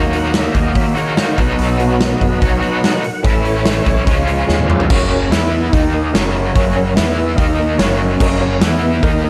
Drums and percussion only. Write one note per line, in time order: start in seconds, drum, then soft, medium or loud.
0.13 open hi-hat medium
0.34 snare loud
0.34 open hi-hat medium
0.55 kick medium
0.55 open hi-hat medium
0.75 kick loud
0.75 open hi-hat medium
0.96 open hi-hat medium
1.17 snare loud
1.17 open hi-hat medium
1.38 kick loud
1.38 open hi-hat medium
1.58 open hi-hat medium
1.79 open hi-hat medium
2.00 snare loud
2.00 open hi-hat medium
2.21 kick medium
2.21 open hi-hat medium
2.42 kick loud
2.42 open hi-hat medium
2.62 open hi-hat medium
2.84 snare loud
2.84 open hi-hat medium
3.04 open hi-hat medium
3.24 kick loud
3.24 open hi-hat medium
3.45 open hi-hat medium
3.65 snare loud
3.65 open hi-hat medium
3.86 kick medium
3.86 open hi-hat medium
4.07 kick loud
4.07 open hi-hat medium
4.27 open hi-hat medium
4.49 snare medium
4.59 high tom medium
4.70 mid tom medium
4.80 floor tom loud
4.90 kick loud
4.90 crash loud
5.32 snare loud
5.32 open hi-hat medium
5.73 kick loud
5.73 open hi-hat medium
6.15 snare loud
6.15 open hi-hat medium
6.55 kick loud
6.55 open hi-hat medium
6.97 snare loud
6.97 open hi-hat medium
7.38 kick loud
7.38 open hi-hat medium
7.79 snare loud
7.79 open hi-hat medium
8.20 kick loud
8.20 cowbell loud
8.20 crash loud
8.61 snare loud
8.61 open hi-hat medium
8.61 cowbell medium
9.03 kick loud
9.03 open hi-hat medium
9.03 cowbell loud